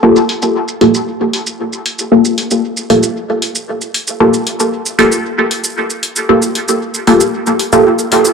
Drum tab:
HH |--o---o---o---o-|--o---o---o---o-|--o---o---o---o-|--o---o---o---o-|
SH |-x-x-x-x---x-x-x|-x-x-x-x---x-x-x|-x-x-x-x---x-x-x|-x-x-x-x-x-x-x-x|